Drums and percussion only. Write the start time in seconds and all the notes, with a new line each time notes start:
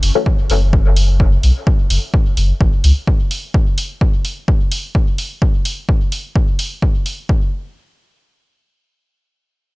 0.03 open hi-hat
0.26 kick
0.50 open hi-hat
0.73 kick
0.96 open hi-hat
1.20 kick
1.43 open hi-hat
1.67 kick
1.90 open hi-hat
2.14 kick
2.37 open hi-hat
2.61 kick
2.84 open hi-hat
3.07 kick
3.31 open hi-hat
3.54 kick
3.78 open hi-hat
4.01 kick
4.25 open hi-hat
4.48 kick
4.72 open hi-hat
4.95 kick
5.18 open hi-hat
5.42 kick
5.65 open hi-hat
5.89 kick
6.12 open hi-hat
6.36 kick
6.59 open hi-hat
6.82 kick
7.06 open hi-hat
7.29 kick